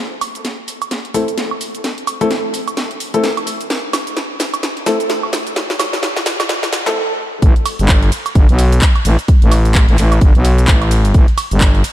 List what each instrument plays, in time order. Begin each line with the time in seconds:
0.21 open hi-hat, high woodblock, shaker
0.35 closed hi-hat, shaker
0.45 snare, closed hi-hat, shaker
0.68 open hi-hat, shaker
0.82 closed hi-hat, high woodblock, shaker
0.91 snare, closed hi-hat, shaker
1.05 closed hi-hat
1.14 grand piano A3 C4 E4 A4, open hi-hat, shaker
1.28 closed hi-hat, shaker
1.38 snare, closed hi-hat, shaker
1.51 high woodblock
1.61 open hi-hat, shaker
1.75 closed hi-hat, shaker
1.84 snare, closed hi-hat, shaker
1.98 closed hi-hat
2.07 open hi-hat, high woodblock, shaker
2.21 grand piano A3 C4 E4 A4, closed hi-hat, shaker
2.31 snare, closed hi-hat, shaker
2.54 open hi-hat, shaker
2.68 closed hi-hat, high woodblock, shaker
2.77 snare, closed hi-hat, shaker
2.91 closed hi-hat
3.00 open hi-hat, shaker
3.14 grand piano A3 C4 E4 A4, closed hi-hat, shaker
3.24 snare, closed hi-hat, shaker
3.37 closed hi-hat, high woodblock
3.47 open hi-hat, shaker
3.61 closed hi-hat, shaker
3.70 snare, closed hi-hat, shaker
3.93 snare, open hi-hat, high woodblock, shaker
4.07 closed hi-hat, shaker
4.17 snare, closed hi-hat, shaker
4.40 snare, open hi-hat, shaker
4.54 closed hi-hat, high woodblock, shaker
4.63 snare, closed hi-hat, shaker
4.77 closed hi-hat
4.86 grand piano A3 C4 E4 A4, snare, open hi-hat, shaker
5.00 closed hi-hat, shaker
5.10 snare, closed hi-hat, shaker
5.23 high woodblock
5.33 snare, open hi-hat, shaker
5.47 closed hi-hat, shaker
5.56 snare, closed hi-hat, shaker
5.70 snare, closed hi-hat
5.79 snare, open hi-hat, high woodblock, shaker
5.93 snare, closed hi-hat, shaker
6.03 snare, closed hi-hat, shaker
6.16 snare
6.26 snare, open hi-hat, shaker
6.40 snare, closed hi-hat, high woodblock, shaker
6.49 snare, closed hi-hat, shaker
6.63 snare, closed hi-hat
6.73 snare, open hi-hat, shaker
6.86 grand piano A3 C4 E4 A4, snare, closed hi-hat, shaker
7.42 fm bass A1, kick, closed hi-hat, shaker
7.56 closed hi-hat
7.66 open hi-hat, ride, high woodblock, shaker
7.79 fm bass G1, closed hi-hat, shaker
7.89 kick, clap, closed hi-hat, shaker
8.02 closed hi-hat
8.12 open hi-hat, ride, shaker
8.26 closed hi-hat, high woodblock, shaker
8.35 fm bass G1, kick, closed hi-hat, shaker
8.49 fm bass B1, closed hi-hat
8.59 open hi-hat, ride, shaker
8.72 closed hi-hat, shaker
8.82 kick, clap, closed hi-hat, shaker
8.96 closed hi-hat, high woodblock
9.05 fm bass A1, open hi-hat, ride, shaker
9.19 closed hi-hat, shaker
9.28 kick, closed hi-hat, shaker
9.42 fm bass A1, closed hi-hat
9.52 open hi-hat, ride, high woodblock, shaker
9.65 closed hi-hat, shaker
9.75 kick, clap, closed hi-hat, shaker
9.88 fm bass A1, closed hi-hat
9.98 fm bass A1, clap, open hi-hat, ride, shaker
10.12 closed hi-hat, high woodblock, shaker
10.21 fm bass G1, kick, closed hi-hat, shaker
10.35 fm bass B1, closed hi-hat
10.45 open hi-hat, ride, shaker
10.58 closed hi-hat, shaker
10.68 fm bass A1, kick, clap, closed hi-hat, shaker
10.82 closed hi-hat, high woodblock
10.91 open hi-hat, ride, shaker
11.05 closed hi-hat, shaker
11.14 fm bass A1, kick, closed hi-hat, shaker
11.28 closed hi-hat
11.38 open hi-hat, ride, high woodblock, shaker
11.51 fm bass G1, closed hi-hat, shaker
11.61 kick, clap, closed hi-hat, shaker
11.75 closed hi-hat
11.84 open hi-hat, ride, shaker